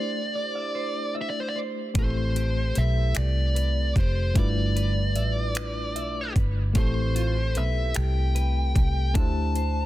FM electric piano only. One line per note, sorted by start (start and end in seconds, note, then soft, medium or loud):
0.00 1.91 A3 medium
0.00 1.91 D4 medium
0.00 1.92 E4 medium
0.00 1.93 G4 medium
0.00 1.94 C5 medium
1.94 4.31 A3 medium
1.94 2.02 B3 soft
1.94 4.32 E4 medium
1.98 4.35 C4 medium
1.98 4.33 G4 soft
1.98 4.34 A4 medium
4.34 6.71 A3 medium
4.34 6.71 D4 medium
4.34 6.72 E4 medium
4.38 6.73 F4 medium
4.38 6.73 B4 medium
6.73 9.10 A3 medium
6.73 9.11 C4 medium
6.73 9.12 E4 medium
6.78 9.12 G4 medium
6.78 9.13 A4 medium
9.14 9.86 A3 medium
9.14 9.86 D4 medium
9.14 9.86 E4 medium
9.18 9.86 G4 medium
9.18 9.86 C5 medium